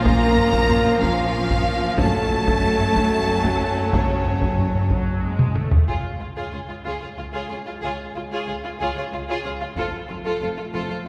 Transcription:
0.00 1.96 A#1 medium
0.00 1.96 F3 medium
0.00 1.96 A#3 medium
0.00 1.95 C#4 medium
0.00 1.98 C#4 medium
0.00 1.95 F4 medium
0.00 1.96 F4 medium
0.00 1.99 A#4 loud
0.00 1.95 F5 medium
0.04 1.01 A#3 medium
0.04 1.00 A#4 medium
0.04 1.00 A#5 loud
0.04 taiko loud
0.37 taiko low-mid medium
0.53 taiko medium
0.70 taiko low-mid medium
0.86 taiko low-mid soft
1.02 1.98 F3 medium
1.02 2.00 F4 medium
1.02 1.97 F5 loud
1.02 taiko medium
1.51 taiko medium
1.99 5.64 F#1 medium
1.99 4.80 F#3 medium
1.99 4.80 A3 medium
1.99 3.94 A3 loud
1.99 5.52 C#4 medium
1.99 5.64 C#4 medium
1.99 5.55 F#4 medium
1.99 3.90 A4 medium
1.99 5.56 C#5 medium
1.99 3.89 A5 loud
1.99 5.56 A5 medium
1.99 taiko medium
2.31 taiko low-mid medium
2.48 taiko medium
2.64 taiko low-mid soft
2.80 taiko low-mid soft
2.96 taiko medium
3.45 taiko medium
3.93 4.89 C#3 medium
3.93 4.90 C#4 medium
3.93 4.89 C#5 medium
3.93 taiko medium
4.26 taiko low-mid medium
4.42 taiko medium
4.58 taiko low-mid medium
4.75 taiko low-mid soft
4.90 5.21 F#3 medium
4.90 taiko medium
5.23 5.55 G#3 medium
5.39 taiko mid medium
5.55 5.88 A3 medium
5.55 taiko mid medium
5.72 taiko low medium
5.88 5.94 C#2 soft
5.88 5.95 C#2 soft
5.88 9.72 G#3 soft
5.88 6.03 F4 soft
5.88 9.72 F4 soft
5.88 6.03 G#4 soft
5.88 6.04 C#5 soft
5.88 taiko soft
6.19 6.27 C#2 soft
6.19 6.26 F4 soft
6.19 6.27 F4 soft
6.19 6.27 G#4 soft
6.36 6.43 C#2 soft
6.36 6.51 F4 soft
6.36 6.51 G#4 soft
6.36 6.52 C#5 soft
6.53 6.59 C#2 soft
6.53 6.60 F4 soft
6.53 6.59 G#4 soft
6.53 6.60 C#5 soft
6.69 6.76 C#2 soft
6.69 6.75 F4 soft
6.69 6.76 G#4 soft
6.84 6.92 C#2 medium
6.84 7.00 F4 soft
6.84 7.01 G#4 soft
6.84 7.01 C#5 medium
7.01 7.08 C#2 soft
7.01 7.08 F4 soft
7.01 7.08 G#4 soft
7.01 7.09 C#5 soft
7.18 7.24 C#2 soft
7.18 7.24 F4 soft
7.18 7.26 G#4 soft
7.33 7.40 C#2 medium
7.33 7.48 F4 medium
7.33 7.48 G#4 medium
7.33 7.49 C#5 soft
7.50 7.56 C#2 soft
7.50 7.57 F4 soft
7.50 7.56 G#4 soft
7.50 7.58 C#5 soft
7.66 7.73 C#2 soft
7.66 7.73 F4 soft
7.66 7.74 F4 soft
7.66 7.74 G#4 soft
7.82 7.89 C#2 medium
7.82 7.98 F4 medium
7.82 7.97 G#4 medium
7.82 7.98 C#5 medium
8.15 8.21 C#2 soft
8.15 8.22 C#2 soft
8.15 8.22 F4 soft
8.15 8.21 G#4 soft
8.31 8.37 C#2 medium
8.31 8.47 F4 medium
8.31 8.46 G#4 medium
8.31 8.46 C#5 medium
8.47 8.54 C#2 soft
8.47 8.54 F4 medium
8.47 8.54 G#4 soft
8.47 8.54 C#5 soft
8.64 8.70 C#2 soft
8.64 8.70 F4 soft
8.64 8.71 F4 soft
8.64 8.70 G#4 soft
8.79 8.86 C#2 medium
8.79 8.95 F4 medium
8.79 8.94 G#4 medium
8.79 8.95 C#5 medium
8.95 9.02 C#2 soft
8.95 9.04 F4 soft
8.95 9.03 G#4 soft
8.95 9.03 C#5 medium
9.12 9.18 C#2 soft
9.12 9.19 C#2 soft
9.12 9.19 F4 soft
9.12 9.20 G#4 soft
9.28 9.34 C#2 medium
9.28 9.44 F4 medium
9.28 9.43 G#4 medium
9.28 9.44 C#5 medium
9.45 9.51 C#2 soft
9.45 9.51 F4 soft
9.45 9.51 G#4 soft
9.45 9.51 C#5 soft
9.61 9.67 C#2 soft
9.61 9.67 F4 soft
9.61 9.67 F4 medium
9.61 9.68 G#4 soft
9.76 9.83 F1 medium
9.76 9.83 F2 medium
9.76 11.08 A3 medium
9.76 11.08 F4 medium
9.76 9.92 F4 medium
9.76 9.91 A4 medium
9.76 9.92 C5 medium
9.76 taiko medium
10.09 10.16 F1 soft
10.09 10.16 F2 soft
10.09 10.15 F4 soft
10.09 10.16 F4 soft
10.09 10.16 A4 soft
10.25 10.32 F2 medium
10.25 10.40 F4 medium
10.25 10.40 A4 medium
10.25 10.41 C5 medium
10.41 10.48 F1 soft
10.41 10.48 F2 soft
10.41 10.48 F4 soft
10.41 10.48 A4 soft
10.41 10.48 C5 soft
10.57 10.64 F2 soft
10.57 10.64 F4 soft
10.57 10.65 A4 soft
10.73 10.81 F1 medium
10.73 10.80 F2 medium
10.73 10.88 F4 medium
10.73 10.89 A4 medium
10.73 10.89 C5 medium
10.90 10.96 F2 soft
10.90 10.96 F4 soft
10.90 10.97 A4 soft
10.90 10.97 C5 soft

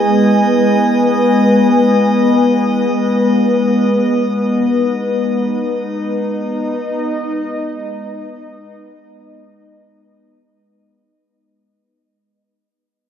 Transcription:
0.00 11.21 G#3 medium
0.00 11.21 B3 medium
0.00 3.94 E4 medium
0.00 11.22 B4 medium
0.00 11.23 D#5 medium
0.00 3.94 G#5 medium
0.00 11.23 D#6 medium
4.48 11.21 D#4 medium
5.51 11.20 D#5 medium

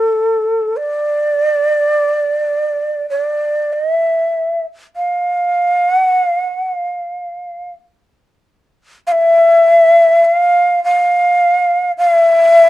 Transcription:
0.00 0.78 A4 medium
0.77 3.09 D5 medium
3.10 3.21 C#5 medium
3.21 3.74 D5 medium
3.73 3.92 D#5 medium
3.92 4.63 E5 medium
4.96 5.93 F5 medium
5.93 6.19 F#5 medium
6.19 6.47 F5 medium
6.47 6.74 F#5 medium
6.74 7.69 F5 medium
9.07 9.13 F5 medium
9.12 10.26 E5 medium
10.25 10.83 F5 medium
10.84 11.92 F5 medium
11.98 12.10 F5 medium
12.10 12.69 E5 medium

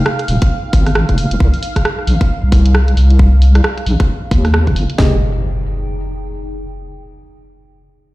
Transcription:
0.00 4.97 D#4 medium
0.00 1.40 G#4 medium
0.00 5.00 F5 medium
0.00 2.12 G5 medium
0.06 cross-stick loud
0.19 cross-stick soft
0.19 closed hi-hat soft
0.28 0.39 D#1 loud
0.28 open hi-hat loud
0.42 kick loud
0.42 closed hi-hat medium
0.73 1.05 G#1 loud
0.73 kick loud
0.73 open hi-hat loud
0.86 cross-stick medium
0.86 open hi-hat medium
0.95 cross-stick loud
1.09 1.26 F1 medium
1.09 kick medium
1.09 closed hi-hat medium
1.18 open hi-hat loud
1.31 1.39 F1 loud
1.31 closed hi-hat medium
1.40 1.51 C2 loud
1.40 kick loud
1.54 open hi-hat medium
1.63 open hi-hat loud
1.76 kick medium
1.76 cross-stick medium
1.76 closed hi-hat medium
1.83 4.98 D5 medium
1.83 cross-stick loud
1.94 4.98 A#5 medium
1.99 cross-stick soft
2.07 2.18 A#1 loud
2.07 open hi-hat loud
2.21 kick loud
2.21 closed hi-hat medium
2.43 2.94 C2 medium
2.52 kick loud
2.52 open hi-hat loud
2.66 closed hi-hat medium
2.75 cross-stick loud
2.88 closed hi-hat medium
2.97 3.61 C2 medium
2.97 open hi-hat loud
3.10 closed hi-hat medium
3.19 kick loud
3.42 open hi-hat loud
3.55 cross-stick medium
3.55 closed hi-hat medium
3.64 cross-stick loud
3.78 cross-stick soft
3.78 closed hi-hat soft
3.86 3.97 A#1 loud
3.86 open hi-hat loud
4.00 kick loud
4.00 cross-stick medium
4.00 closed hi-hat medium
4.31 4.69 D#2 loud
4.31 kick loud
4.31 open hi-hat loud
4.45 cross-stick medium
4.45 open hi-hat medium
4.54 cross-stick loud
4.67 4.74 G1 medium
4.67 kick medium
4.67 closed hi-hat medium
4.76 4.87 G1 medium
4.76 open hi-hat loud
4.90 closed hi-hat medium
4.98 5.19 F1 medium
4.98 6.74 D#4 medium
4.98 5.16 G4 medium
4.98 5.16 G#4 medium
4.98 5.16 D#5 medium
4.98 kick loud
4.98 snare loud
4.98 impact medium
5.07 6.74 G#4 medium
5.14 6.74 G5 medium

